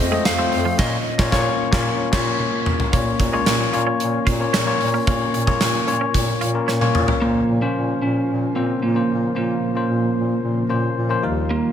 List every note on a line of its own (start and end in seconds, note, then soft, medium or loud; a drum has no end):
0.00 0.18 F2 loud
0.00 0.11 A3 medium
0.00 0.77 A3 medium
0.00 0.11 C4 medium
0.00 0.77 C4 medium
0.00 0.12 F4 medium
0.00 2.89 F4 medium
0.00 0.39 C5 medium
0.00 0.25 D#5 loud
0.11 0.23 G#3 medium
0.11 0.31 A3 medium
0.11 0.31 C4 medium
0.11 0.31 F4 medium
0.11 0.31 D#5 medium
0.25 0.44 F2 medium
0.25 0.79 F5 loud
0.25 snare loud
0.25 closed hi-hat medium
0.25 tambourine medium
0.38 0.67 A3 medium
0.38 0.49 A3 medium
0.38 0.68 C4 medium
0.38 0.68 F4 medium
0.38 0.68 C5 medium
0.52 0.71 F2 loud
0.52 muted clean electric guitar stroke soft
0.52 open hi-hat medium
0.65 0.76 F3 medium
0.78 0.97 A#2 medium
0.78 0.97 A#2 loud
0.78 0.96 A#3 medium
0.78 2.91 A#3 medium
0.78 0.97 C#4 loud
0.78 2.91 C#4 medium
0.78 0.97 F4 medium
0.78 0.97 C#5 loud
0.78 1.33 D#5 medium
0.78 kick loud
0.78 snare loud
0.78 crash medium
1.18 1.30 A#2 loud
1.18 1.30 A#3 loud
1.18 1.30 C#4 loud
1.18 1.30 F4 loud
1.18 1.31 C#5 loud
1.18 kick loud
1.18 snare loud
1.32 1.51 A#2 loud
1.32 1.50 A#3 loud
1.32 1.50 C#4 loud
1.32 1.51 F4 loud
1.32 1.51 C#5 loud
1.32 2.36 C#5 medium
1.32 kick loud
1.32 snare loud
1.72 1.91 A#2 loud
1.72 1.90 A#3 loud
1.72 1.91 C#4 loud
1.72 1.91 F4 loud
1.72 kick loud
1.72 snare loud
2.12 2.31 A#2 loud
2.12 2.30 A#3 medium
2.12 2.31 C#4 medium
2.12 2.31 F4 loud
2.12 2.31 C#5 loud
2.12 kick loud
2.12 snare loud
2.12 crash medium
2.40 high tom medium
2.66 mid tom loud
2.80 floor tom loud
2.92 3.69 A#2 medium
2.92 3.12 A#2 loud
2.92 3.22 A#3 medium
2.92 3.04 A#3 medium
2.92 7.18 A#3 medium
2.92 3.22 C#4 medium
2.92 7.18 C#4 medium
2.92 3.22 F4 medium
2.92 7.18 F4 medium
2.92 3.23 C#5 medium
2.92 kick loud
2.92 closed hi-hat medium
3.19 3.39 A#2 medium
3.19 muted clean electric guitar stroke soft
3.19 kick medium
3.19 closed hi-hat medium
3.32 3.44 G#3 medium
3.32 3.62 A#3 medium
3.32 3.62 C#4 medium
3.32 3.62 F4 medium
3.32 3.63 C#5 loud
3.46 3.66 A#2 loud
3.46 3.57 A#3 medium
3.46 snare loud
3.46 closed hi-hat medium
3.73 3.93 A#2 loud
3.73 4.22 A#3 medium
3.73 4.22 C#4 medium
3.73 4.22 F4 medium
3.73 4.22 C#5 medium
3.73 muted clean electric guitar stroke soft
3.73 closed hi-hat medium
3.87 3.97 C#4 medium
4.00 4.19 A#2 loud
4.00 closed hi-hat medium
4.27 4.46 A#2 loud
4.27 4.37 F4 medium
4.27 kick medium
4.27 closed hi-hat medium
4.40 4.60 A#3 medium
4.40 4.60 C#4 medium
4.40 4.60 F4 medium
4.40 4.60 C#5 medium
4.53 4.73 A#2 medium
4.53 4.64 C#4 medium
4.53 snare loud
4.53 closed hi-hat medium
4.66 4.96 A#3 medium
4.66 4.96 C#4 medium
4.66 4.96 F4 medium
4.66 4.97 C#5 medium
4.66 muted clean electric guitar stroke soft
4.81 5.00 A#2 loud
4.81 open hi-hat medium
4.94 5.05 A#3 medium
5.07 5.27 A#2 loud
5.07 5.84 A#2 medium
5.07 5.36 A#3 medium
5.07 5.18 A#3 medium
5.07 5.37 C#4 medium
5.07 5.37 F4 medium
5.07 5.37 C#5 medium
5.07 kick loud
5.07 closed hi-hat medium
5.34 5.53 A#2 loud
5.34 muted clean electric guitar stroke soft
5.34 closed hi-hat medium
5.47 5.58 G#3 medium
5.47 5.76 A#3 medium
5.47 5.77 C#4 medium
5.47 5.77 F4 medium
5.47 5.77 C#5 loud
5.47 kick medium
5.61 5.80 A#2 medium
5.61 5.72 A#3 medium
5.61 snare loud
5.61 closed hi-hat medium
5.87 6.07 A#2 medium
5.87 6.36 A#3 medium
5.87 6.36 C#4 medium
5.87 6.36 F4 medium
5.87 6.37 C#5 medium
5.87 muted clean electric guitar stroke soft
5.87 closed hi-hat medium
6.01 6.12 C#4 medium
6.14 6.34 A#2 medium
6.14 kick medium
6.14 closed hi-hat medium
6.41 6.61 A#2 medium
6.41 6.52 F4 medium
6.41 closed hi-hat medium
6.54 6.74 A#3 medium
6.54 6.74 C#4 medium
6.54 6.74 F4 medium
6.54 6.74 A#4 medium
6.68 6.87 A#2 medium
6.68 6.79 C#4 medium
6.68 snare medium
6.81 7.10 A#3 medium
6.81 7.11 C#4 medium
6.81 7.11 F4 medium
6.81 7.11 C#5 medium
6.81 muted clean electric guitar stroke soft
6.81 high tom medium
6.95 7.14 A#2 medium
6.95 mid tom medium
7.08 7.19 A#3 medium
7.08 floor tom medium
7.21 7.98 A#2 medium
7.21 7.41 A#2 medium
7.21 11.20 C#3 medium
7.21 11.72 F3 medium
7.21 7.50 A#3 medium
7.21 7.59 A#3 medium
7.21 11.72 A#3 medium
7.21 7.51 C#4 medium
7.21 7.51 F4 medium
7.21 11.20 F4 medium
7.21 11.20 C5 medium
7.21 7.51 C5 medium
7.49 7.68 A#2 medium
7.61 8.30 A#3 medium
7.61 8.30 C#4 medium
7.61 7.99 C#4 medium
7.61 8.30 F4 medium
7.61 8.30 C5 medium
7.75 7.94 A#2 medium
8.02 8.21 A#2 medium
8.02 8.55 C#4 medium
8.29 8.48 A#2 medium
8.55 8.75 A#2 medium
8.55 8.84 A#3 medium
8.55 8.82 C4 medium
8.55 8.85 C#4 medium
8.55 8.85 F4 medium
8.55 8.85 C5 medium
8.82 9.02 A#2 medium
8.82 9.32 A#3 medium
8.95 9.25 A#3 medium
8.95 9.25 C#4 medium
8.95 9.25 F4 medium
8.95 9.25 C5 medium
9.09 9.28 A#2 medium
9.35 10.12 A#2 medium
9.35 9.55 A#2 medium
9.35 9.65 A#3 medium
9.35 10.39 A#3 medium
9.35 9.65 C#4 medium
9.35 9.65 F4 medium
9.35 9.65 C5 medium
9.76 10.44 A#3 medium
9.76 10.44 C#4 medium
9.76 10.44 F4 medium
9.76 10.45 C5 medium
9.90 10.09 A#2 medium
10.16 10.36 A#2 medium
10.43 10.62 A#2 medium
10.69 10.89 A#2 medium
10.69 10.99 A#3 medium
10.69 10.99 C#4 medium
10.69 10.99 F4 medium
10.69 10.99 C5 medium
10.97 11.16 A#2 medium
11.09 11.23 A#3 medium
11.09 11.23 C#4 medium
11.09 11.22 F4 medium
11.09 11.24 C5 medium
11.23 11.62 D#2 medium
11.23 11.72 D#3 medium
11.23 11.72 G3 medium
11.23 11.72 D#4 medium
11.23 11.72 F4 medium
11.23 11.72 A#4 medium
11.50 11.72 A#3 medium